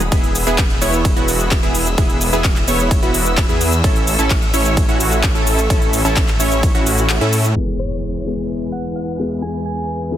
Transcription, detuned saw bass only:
0.12 0.45 E1 loud
0.47 0.79 E1 medium
0.82 1.14 E1 loud
1.17 1.61 E1 loud
1.63 1.96 E1 loud
1.98 2.31 E1 loud
2.33 2.65 E1 medium
2.68 3.00 E1 loud
3.03 3.47 E1 loud
3.49 3.82 E2 loud
3.84 4.17 A1 loud
4.19 4.52 A1 loud
4.54 4.86 A1 loud
4.89 5.33 A1 loud
5.35 5.68 A1 loud
5.70 6.03 A1 loud
6.05 6.38 A1 loud
6.40 6.72 A1 loud
6.75 7.19 A1 loud
7.21 7.54 A2 loud

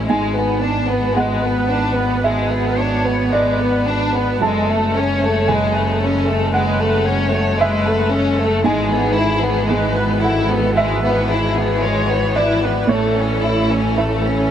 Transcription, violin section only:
0.08 0.33 G#3 soft
0.35 0.63 B3 soft
0.61 0.89 D4 soft
0.90 1.17 B3 soft
1.15 1.43 G#3 soft
1.43 1.70 B3 soft
1.70 1.97 D4 soft
1.96 2.24 B3 soft
2.24 2.49 G#3 soft
2.49 2.77 B3 soft
2.78 3.05 D4 soft
3.06 3.33 B3 soft
3.33 3.60 G#3 soft
3.60 3.87 B3 soft
3.87 4.15 D4 soft
4.15 4.42 B3 soft
4.43 4.68 G#3 soft
4.71 4.97 A3 soft
4.97 5.23 C#4 soft
5.24 5.50 A3 soft
5.51 5.76 G#3 medium
5.76 6.02 A3 soft
6.03 6.28 C#4 soft
6.28 6.54 A3 soft
6.55 6.79 G#3 soft
6.81 7.07 A3 medium
7.07 7.33 C#4 medium
7.32 7.59 A3 soft
7.59 7.86 G#3 soft
7.87 8.13 A3 soft
8.11 8.38 C#4 medium
8.40 8.66 A3 soft
8.65 8.90 G#3 medium
8.92 9.18 B3 soft
9.17 9.43 E4 medium
9.42 9.69 B3 medium
9.70 9.96 G#3 soft
9.96 10.23 B3 soft
10.22 10.49 E4 soft
10.50 10.76 B3 soft
10.76 11.01 G#3 soft
11.05 11.30 B3 soft
11.31 11.57 E4 soft
11.57 11.83 B3 soft
11.83 12.09 G#3 medium
12.10 12.36 B3 soft
12.37 12.63 E4 soft
12.63 12.89 B3 soft
12.90 13.14 A3 soft
13.17 13.43 C#4 soft
13.43 13.70 E4 soft
13.72 13.98 C#4 soft
13.98 14.25 A3 soft
14.25 14.51 C#4 soft

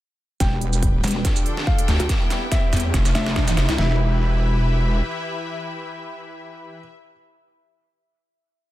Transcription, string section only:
0.57 1.59 B4 medium
0.79 3.28 G5 medium
1.25 2.44 D4 medium
1.41 2.44 A4 medium
2.09 2.94 E4 medium
2.31 2.94 B4 medium
2.94 3.78 F4 medium
3.21 3.78 C5 medium
3.32 3.78 G5 medium
3.78 6.80 E4 medium
3.85 6.87 B4 medium
3.92 6.93 E5 medium

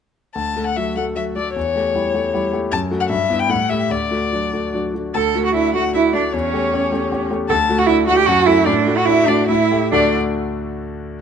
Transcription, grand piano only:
0.35 1.52 D2 soft
0.56 0.75 A3 soft
0.56 0.75 A4 soft
0.77 0.95 F#4 soft
0.77 0.95 A4 soft
0.97 1.15 A3 soft
0.97 1.15 A4 soft
1.16 1.34 F#4 soft
1.16 1.34 A4 soft
1.36 1.54 A3 soft
1.36 1.54 A4 soft
1.56 2.68 E2 soft
1.75 1.93 A3 soft
1.75 1.93 G4 soft
1.95 2.13 E4 soft
1.95 2.13 G4 soft
2.14 2.32 A3 soft
2.14 2.32 G4 soft
2.34 2.51 E4 soft
2.34 2.51 G4 soft
2.53 2.70 A3 soft
2.53 2.70 G4 soft
2.72 3.10 F#2 soft
2.91 3.09 A3 soft
2.91 3.09 F#4 soft
3.10 3.48 G2 medium
3.30 3.48 B3 soft
3.30 3.48 E4 soft
3.49 3.89 A2 medium
3.70 3.89 A3 soft
3.70 3.89 G4 soft
3.90 5.11 D2 soft
4.11 4.30 A3 soft
4.11 4.30 F#4 soft
4.32 4.51 D4 soft
4.32 4.51 F#4 soft
4.53 4.72 A3 soft
4.53 4.72 F#4 soft
4.74 4.93 D4 soft
4.74 4.93 F#4 soft
4.94 5.13 A3 soft
4.94 5.13 F#4 soft
5.15 6.29 D2 medium
5.35 5.53 A3 soft
5.35 5.53 F#4 soft
5.54 5.72 D4 soft
5.54 5.72 F#4 soft
5.74 5.92 A3 soft
5.74 5.92 F#4 soft
5.94 6.12 D4 soft
5.94 6.12 F#4 soft
6.14 6.31 A3 soft
6.14 6.32 F#4 soft
6.34 7.46 E2 medium
6.53 6.71 A3 soft
6.53 6.71 G4 soft
6.73 6.90 C#4 soft
6.73 6.90 G4 soft
6.92 7.09 A3 soft
6.92 7.09 G4 soft
7.12 7.29 C#4 soft
7.12 7.29 G4 medium
7.31 7.48 A3 soft
7.31 7.48 G4 soft
7.50 8.25 D2 medium
7.69 7.87 A3 soft
7.69 7.87 F#4 medium
7.88 8.06 D4 soft
7.88 8.06 F#4 medium
8.07 8.25 A3 soft
8.07 8.25 F#4 medium
8.27 8.65 F#2 medium
8.47 8.65 A3 soft
8.47 8.65 F#4 medium
8.66 9.47 A2 medium
8.87 9.05 A3 medium
8.87 9.05 F#4 medium
9.07 9.26 D4 soft
9.07 9.26 F#4 soft
9.28 9.47 A3 soft
9.28 9.47 F#4 medium
9.49 9.91 A2 medium
9.71 9.90 A3 soft
9.71 9.91 G4 soft
9.92 10.16 D2 medium
9.92 10.16 D3 medium
9.92 10.16 A3 medium
9.92 10.16 D4 medium
9.92 10.16 F#4 medium
9.92 10.16 D5 medium

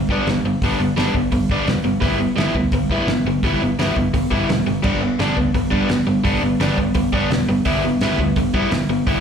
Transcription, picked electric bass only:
0.08 0.20 G2 medium
0.27 0.38 G1 medium
0.44 0.55 G1 medium
0.62 0.73 G1 medium
0.80 0.91 G1 medium
0.97 1.08 G1 medium
1.15 1.26 G1 medium
1.32 1.43 G1 loud
1.50 1.61 G1 medium
1.66 1.78 E1 medium
1.85 1.96 G1 medium
2.02 2.25 G1 medium
2.37 2.49 G1 medium
2.55 2.66 D2 medium
2.72 2.84 G1 medium
2.89 3.01 G2 medium
3.07 3.19 G1 medium
3.25 3.37 G1 medium
3.43 3.55 G1 medium
3.62 3.73 G1 medium
3.79 3.90 G1 medium
3.96 4.08 G1 medium
4.13 4.25 G1 medium
4.32 4.43 G1 medium
4.50 4.61 E1 medium
4.67 4.78 G1 medium
4.84 5.07 G1 loud
5.20 5.31 G1 medium
5.37 5.48 D2 medium
5.54 5.66 G1 medium
5.72 5.84 G2 medium
5.90 6.01 G1 medium
6.07 6.19 G1 medium
6.25 6.37 G1 medium
6.42 6.54 G1 medium
6.60 6.71 G1 medium
6.77 6.89 G1 medium
6.95 7.06 G1 medium
7.13 7.24 G1 medium
7.30 7.42 E1 medium
7.48 7.59 G1 medium
7.65 7.88 G1 medium
8.01 8.13 G1 medium
8.18 8.30 D2 medium
8.36 8.47 G1 medium
8.54 8.65 G2 medium
8.71 8.83 G1 medium
8.87 8.99 G1 medium
9.07 9.18 G1 medium

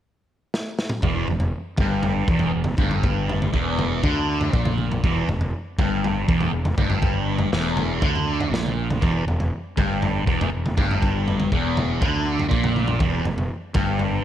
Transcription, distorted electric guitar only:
1.04 1.27 E2 loud
1.30 1.49 E2 medium
1.80 2.28 G2 loud
2.29 2.52 E2 medium
2.53 2.73 E2 medium
2.78 3.52 G2 loud
3.53 4.02 E2 loud
4.03 4.54 D3 loud
4.54 5.03 A#2 loud
5.05 5.28 E2 loud
5.30 5.49 E2 medium
5.80 6.27 G2 loud
6.28 6.52 E2 loud
6.53 6.73 E2 medium
6.78 7.52 G2 loud
7.52 8.02 E2 loud
8.03 8.53 D3 loud
8.53 9.02 A#2 medium
9.01 9.25 E2 loud
9.26 9.47 E2 medium
9.77 10.26 G2 medium
10.26 10.51 E2 medium
10.52 10.72 E2 medium
10.77 11.51 G2 loud
11.53 12.01 E2 loud
12.02 12.48 D3 loud
12.48 12.99 A#2 loud
13.00 13.24 E2 loud
13.27 13.46 E2 medium
13.76 14.24 G2 loud

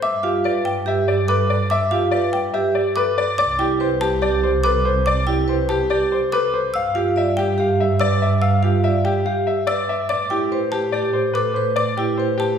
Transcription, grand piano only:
0.03 0.30 E5 medium
0.24 0.51 G4 medium
0.45 0.72 D5 medium
0.88 1.14 E5 medium
1.08 1.35 D5 medium
1.29 1.56 B4 medium
1.50 1.77 D5 medium
1.71 1.98 E5 medium
1.92 2.19 G4 medium
2.11 2.39 D5 medium
2.54 2.81 E5 medium
2.75 3.02 D5 medium
2.97 3.24 B4 medium
3.18 3.37 D5 medium
3.39 3.66 D5 medium
3.60 3.87 G4 medium
3.81 4.08 C5 medium
4.01 4.28 G4 medium
4.22 4.49 D5 medium
4.43 4.70 C5 medium
4.64 4.91 B4 medium
4.85 5.12 C5 medium
5.07 5.34 D5 medium
5.28 5.55 G4 medium
5.49 5.76 C5 medium
5.70 5.96 G4 medium
5.90 6.17 D5 medium
6.12 6.38 C5 medium
6.33 6.60 B4 medium
6.54 6.80 C5 medium
6.75 7.02 F5 medium
6.96 7.22 G4 medium
7.17 7.44 E5 medium
7.39 7.65 G4 medium
7.60 7.86 F5 medium
7.80 8.07 E5 medium
8.00 8.27 D5 medium
8.22 8.48 E5 medium
8.42 8.69 F5 medium
8.64 8.90 G4 medium
8.84 9.11 E5 medium
9.05 9.32 G4 medium
9.26 9.53 F5 medium
9.47 9.74 E5 medium
9.67 9.95 D5 medium
9.89 10.16 E5 medium
10.10 10.37 D5 medium
10.31 10.58 G4 medium
10.52 10.79 C5 medium
10.72 11.00 G4 medium
10.92 11.20 D5 medium
11.13 11.41 C5 medium
11.34 11.62 B4 medium
11.54 11.83 C5 medium
11.76 12.04 D5 medium
11.97 12.25 G4 medium
12.18 12.46 C5 medium
12.38 12.58 G4 medium

